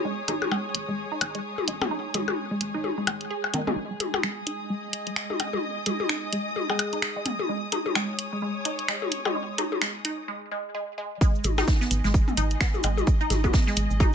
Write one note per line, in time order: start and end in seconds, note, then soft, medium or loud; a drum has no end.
0.00 10.28 G#3 medium
0.00 3.78 G#4 medium
0.00 10.28 G#4 medium
0.00 3.77 C#5 medium
0.00 3.77 D#6 medium
0.05 0.09 G#3 medium
0.28 0.47 G#1 loud
0.28 0.34 D#4 medium
0.28 closed hi-hat medium
0.28 high tom medium
0.42 high tom medium
0.42 percussion blips medium
0.51 0.58 G#3 medium
0.51 percussion blips medium
0.75 0.85 G#1 medium
0.75 closed hi-hat medium
0.88 1.05 G#1 medium
0.88 0.91 G#3 medium
1.12 1.16 D#4 medium
1.21 1.40 G#1 medium
1.21 closed hi-hat medium
1.21 percussion blips medium
1.35 1.39 G#3 medium
1.35 closed hi-hat soft
1.58 high tom medium
1.68 1.86 G#1 medium
1.68 1.72 G#3 medium
1.68 closed hi-hat medium
1.82 mid tom medium
1.82 high tom medium
1.82 percussion blips medium
1.91 1.97 D#4 medium
2.14 2.33 G#1 medium
2.14 2.20 G#3 medium
2.14 closed hi-hat medium
2.14 high tom medium
2.28 high tom medium
2.28 percussion blips medium
2.51 2.54 G#3 medium
2.61 2.71 G#1 medium
2.61 closed hi-hat medium
2.74 2.91 G#1 medium
2.74 2.79 D#4 medium
2.84 high tom medium
2.98 3.02 G#3 medium
3.07 3.26 G#1 medium
3.07 closed hi-hat medium
3.07 percussion blips medium
3.21 closed hi-hat soft
3.31 3.35 G#4 loud
3.44 percussion blips medium
3.54 3.72 G#1 medium
3.54 3.60 D#3 loud
3.54 closed hi-hat medium
3.54 mid tom medium
3.67 3.70 G#3 loud
3.67 mid tom medium
3.67 high tom medium
3.91 3.95 G#3 medium
4.00 closed hi-hat medium
4.00 high tom medium
4.13 10.28 D#6 medium
4.13 high tom medium
4.13 percussion blips medium
4.23 4.28 G#3 medium
4.23 finger snap medium
4.47 4.53 D#4 medium
4.47 closed hi-hat medium
4.66 8.00 D#5 medium
4.70 4.76 G#3 medium
4.93 closed hi-hat medium
5.07 5.10 G#3 medium
5.07 closed hi-hat soft
5.16 finger snap medium
5.30 5.34 D#4 medium
5.30 high tom medium
5.40 closed hi-hat medium
5.40 percussion blips medium
5.53 5.58 G#3 medium
5.53 high tom medium
5.86 5.90 G#3 medium
5.86 closed hi-hat medium
5.86 high tom medium
6.00 high tom medium
6.09 6.16 D#4 medium
6.09 finger snap loud
6.33 6.39 G#3 medium
6.33 closed hi-hat medium
6.56 high tom medium
6.70 6.73 G#3 medium
6.70 7.34 G#4 medium
6.70 percussion blips medium
6.79 closed hi-hat medium
6.79 percussion blips medium
6.93 6.97 D#4 medium
6.93 closed hi-hat soft
7.02 finger snap loud
7.16 7.21 G#3 medium
7.26 closed hi-hat medium
7.26 mid tom medium
7.39 high tom medium
7.49 7.53 G#3 medium
7.72 7.79 D#4 medium
7.72 closed hi-hat loud
7.72 high tom medium
7.86 10.28 C#5 medium
7.86 high tom medium
7.95 8.02 G#3 medium
7.95 finger snap medium
7.95 percussion blips medium
8.19 closed hi-hat loud
8.33 8.35 G#3 medium
8.42 8.46 G#3 medium
8.65 8.71 D#4 medium
8.65 closed hi-hat loud
8.79 closed hi-hat soft
8.88 8.95 G#3 medium
8.88 finger snap loud
9.02 high tom medium
9.12 closed hi-hat loud
9.25 9.28 G#3 medium
9.25 high tom medium
9.25 percussion blips medium
9.35 9.39 G#3 medium
9.58 9.65 D#4 medium
9.58 closed hi-hat loud
9.58 high tom medium
9.72 high tom medium
9.82 9.86 G#3 medium
9.82 finger snap medium
10.05 10.11 D#4 medium
10.05 closed hi-hat loud
10.28 10.32 G#3 medium
10.52 10.56 G#3 medium
10.75 10.79 G#3 medium
10.98 11.02 G#3 medium
11.21 11.25 G#3 loud
11.21 14.15 G#3 medium
11.21 kick loud
11.21 closed hi-hat medium
11.21 cabasa soft
11.35 14.15 D#5 medium
11.35 cabasa soft
11.44 11.63 G#1 loud
11.44 closed hi-hat medium
11.44 high tom medium
11.44 cabasa medium
11.58 11.60 D#4 loud
11.58 snare medium
11.58 high tom medium
11.58 percussion blips medium
11.58 cabasa soft
11.63 14.15 G#4 medium
11.68 kick loud
11.68 snare loud
11.68 closed hi-hat medium
11.68 cabasa medium
11.81 11.84 B3 loud
11.81 snare medium
11.81 cabasa soft
11.91 12.01 G#1 medium
11.91 closed hi-hat medium
11.91 closed hi-hat loud
11.91 cabasa medium
12.04 12.21 G#1 medium
12.04 12.07 G#3 loud
12.04 snare soft
12.04 cabasa soft
12.14 kick loud
12.14 closed hi-hat medium
12.14 cabasa soft
12.28 mid tom medium
12.28 cabasa soft
12.37 12.56 G#1 medium
12.37 12.40 D#4 loud
12.37 closed hi-hat medium
12.37 cabasa loud
12.51 closed hi-hat soft
12.51 cabasa soft
12.60 12.65 B3 loud
12.60 finger snap loud
12.60 kick loud
12.60 snare loud
12.60 closed hi-hat loud
12.60 cabasa medium
12.74 high tom medium
12.74 cabasa soft
12.83 13.02 G#1 medium
12.83 12.88 G#3 loud
12.83 closed hi-hat medium
12.83 percussion blips medium
12.83 cabasa loud
12.97 high tom medium
12.97 cabasa soft
13.07 kick loud
13.07 closed hi-hat medium
13.07 cabasa medium
13.21 13.23 D#4 loud
13.21 cabasa soft
13.30 13.49 G#1 loud
13.30 snare soft
13.30 closed hi-hat loud
13.30 closed hi-hat medium
13.30 high tom medium
13.30 cabasa medium
13.44 13.47 B3 loud
13.44 kick medium
13.44 closed hi-hat soft
13.44 high tom medium
13.44 cabasa soft
13.53 kick loud
13.53 snare loud
13.53 closed hi-hat medium
13.53 cabasa medium
13.67 13.70 G#3 loud
13.67 snare soft
13.67 cabasa soft
13.76 13.87 G#1 medium
13.76 closed hi-hat medium
13.76 closed hi-hat loud
13.76 cabasa loud
13.91 14.07 G#1 medium
13.91 cabasa soft
14.00 14.03 D#4 loud
14.00 kick loud
14.00 closed hi-hat medium
14.00 high tom medium
14.00 cabasa medium